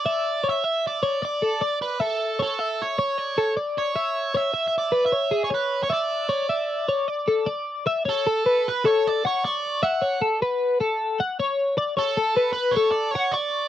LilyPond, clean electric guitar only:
\new Staff \with { instrumentName = "Clean electric guitar" } { \time 5/4 \key d \major \tempo 4 = 154 e''4 cis''8 e''4 cis''8 d''8 a'8 d''4 | e''4 cis''8 e''4 cis''8 d''8 a'8 d''4 | e''4 cis''8 e''4 b'8 cis''8 gis'8 cis''4 | e''4 cis''8 e''4 cis''8 d''8 a'8 d''4 |
e''8 cis''8 a'8 b'4 a'4 fis''8 cis'''4 | e''8 cis''8 a'8 b'4 a'4 fis''8 cis''4 | d''8 cis''8 a'8 b'4 a'4 fis''8 cis'''4 | }